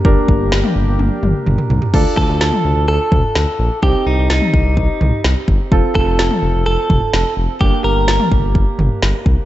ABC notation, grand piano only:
X:1
M:4/4
L:1/8
Q:1/4=127
K:Gm
V:1 name="Grand piano"
[DGB]8 | [DFA]8 | [CEG]8 | [CFA]8 |
[B,DG]8 |]